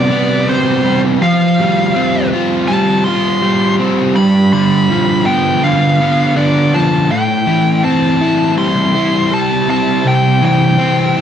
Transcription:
Already playing: overdriven electric guitar C3 G3, lead electric guitar D5
0.10 overdriven electric guitar B3
0.47 overdriven electric guitar C3, lead electric guitar C5
0.84 overdriven electric guitar G3
1.21 overdriven electric guitar F3, lead electric guitar F5
1.59 overdriven electric guitar G3
1.95 overdriven electric guitar C4
2.33 overdriven electric guitar F4
2.68 overdriven electric guitar G3, lead electric guitar A5
3.04 overdriven electric guitar F4, lead electric guitar C6
3.42 overdriven electric guitar G3
3.79 overdriven electric guitar C4
4.15 overdriven electric guitar G2, lead electric guitar B5
4.53 overdriven electric guitar D3, lead electric guitar B5
4.90 overdriven electric guitar F3
5.26 overdriven electric guitar B3, lead electric guitar G5
5.63 overdriven electric guitar D3, lead electric guitar F5
6.00 overdriven electric guitar B3
6.36 overdriven electric guitar D3, lead electric guitar D5
6.74 overdriven electric guitar F3, lead electric guitar A5
7.10 overdriven electric guitar A2, lead electric guitar G5
7.47 overdriven electric guitar E3
7.84 overdriven electric guitar C4, lead electric guitar A5
8.21 overdriven electric guitar E4
8.57 overdriven electric guitar G3, lead electric guitar C6
8.95 overdriven electric guitar E4
9.31 overdriven electric guitar G3, lead electric guitar A5
9.68 overdriven electric guitar C4, lead electric guitar A5
10.05 overdriven electric guitar C3, lead electric guitar G5
10.41 overdriven electric guitar E3, lead electric guitar G5
10.78 overdriven electric guitar C4
11.16 overdriven electric guitar E4

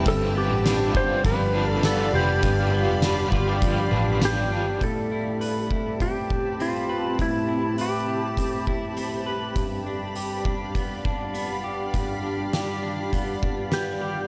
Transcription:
Already playing: clean electric guitar G3 C4 E4 B4
0.05 picked electric bass G1, clean electric guitar G2, overdriven electric guitar G3 D4 F4 B4, ambient pad G4 D5 F5 B5, electric slide guitar A4, kick, closed hi-hat
0.34 clean electric guitar B3, overdriven electric guitar D4 F4 B4, electric slide guitar G4
0.50 picked electric bass A1
0.64 overdriven electric guitar G3 D4 F4 B4, clean electric guitar D4, snare, closed hi-hat, tambourine
0.94 picked electric bass G1, overdriven electric guitar D4 F4 B4, clean electric guitar G4, electric slide guitar C5, kick
1.24 picked electric bass G1, clean electric guitar F3, overdriven electric guitar G3 D4 F4 B4, electric slide guitar B4, kick, closed hi-hat
1.54 clean electric guitar D4, overdriven electric guitar D4 F4 B4
1.73 electric slide guitar A4
1.83 overdriven electric guitar G3 D4 F4 B4, clean electric guitar B3, electric slide guitar A4, snare, closed hi-hat, tambourine
2.13 picked electric bass F1, clean electric guitar C4, overdriven electric guitar D4 F4 B4, electric slide guitar G4
2.29 clean electric guitar D4
2.43 picked electric bass G1, clean electric guitar G2, overdriven electric guitar G3 D4 F4 B4, kick, closed hi-hat
2.72 clean electric guitar B3, overdriven electric guitar D4 F4 B4
2.88 picked electric bass F1
3.02 overdriven electric guitar G3 D4 F4 B4, clean electric guitar D4, snare, closed hi-hat, tambourine
3.31 picked electric bass G1, overdriven electric guitar D4 F4 B4, clean electric guitar F4, kick
3.48 clean electric guitar G4
3.61 clean electric guitar F3, overdriven electric guitar G3 D4 F4 B4, kick, closed hi-hat
3.91 picked electric bass A1, clean electric guitar D4, overdriven electric guitar D4 F4 B4
4.21 overdriven electric guitar G3 D4 F4 B4, clean electric guitar B3, snare, closed hi-hat, tambourine
4.25 electric slide guitar G4
4.50 picked electric bass G1, clean electric guitar D4, overdriven electric guitar D4 F4 B4
4.81 clean electric guitar A2, ambient pad C4 G4 A5 B5, electric slide guitar A4, kick, closed hi-hat
5.12 clean electric guitar E4
5.41 clean electric guitar B4, closed hi-hat
5.71 clean electric guitar E4, kick
6.00 clean electric guitar C4, electric slide guitar G4, kick, closed hi-hat
6.30 kick
6.60 clean electric guitar C4, electric slide guitar F4, closed hi-hat
6.89 clean electric guitar B4
7.19 clean electric guitar A2, electric slide guitar E4, kick, closed hi-hat
7.48 clean electric guitar E4
7.78 electric slide guitar G4, clean electric guitar B4, closed hi-hat
8.08 clean electric guitar E4
8.37 clean electric guitar C4, kick, closed hi-hat
8.67 clean electric guitar E4, kick
8.97 clean electric guitar C4, closed hi-hat
9.26 clean electric guitar B4
9.56 clean electric guitar G2, ambient pad D5 F5, kick, closed hi-hat
9.86 clean electric guitar D4
10.15 clean electric guitar G4, closed hi-hat
10.45 clean electric guitar D4, kick
10.75 clean electric guitar B3, kick, closed hi-hat
11.05 clean electric guitar D4, kick
11.34 clean electric guitar B3, closed hi-hat
11.64 clean electric guitar G4
11.94 clean electric guitar G2, kick, closed hi-hat
12.23 clean electric guitar D4
12.53 clean electric guitar G4, snare, closed hi-hat
12.83 clean electric guitar D4
13.13 clean electric guitar B3, kick, closed hi-hat
13.43 clean electric guitar D4, kick
13.72 clean electric guitar B3, electric slide guitar G4, snare, closed hi-hat
14.02 clean electric guitar G4

